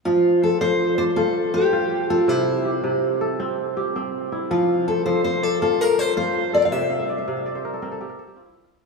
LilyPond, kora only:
<<
  \new Staff \with { instrumentName = "Kora" } { \time 12/8 \key f \major \tempo 4. = 108 << { r4 c''4. d''4. c''4. a'8~ | a'8 r8 g'4. a'4. g'4. e'8~ | e'8 r8 c''4. d''4. c''4. a'8~ | a'8 r1 r4. | } \\ { r1. | r1. | r1. | r16 g''16 f''16 e''16 d''16 e''16 f''16 e''16 d''16 c''16 bes'16 a'16 bes'16 a'16 g'16 bes'16 a'16 g'16 f'16 e'16 g'16 f'16 e'8 | } >> }
  \new Staff \with { instrumentName = "Kora" } { \clef bass \time 12/8 \key f \major f4 r8 f4 r8 f'4 r8 f'4 r8 | c4 r8 c4 r8 c'4 r8 c'4 r8 | f4 r8 f4 r8 f'4 r8 f'4 r8 | c4 r8 c4 r8 c'4 r8 c'4 r8 | }
>>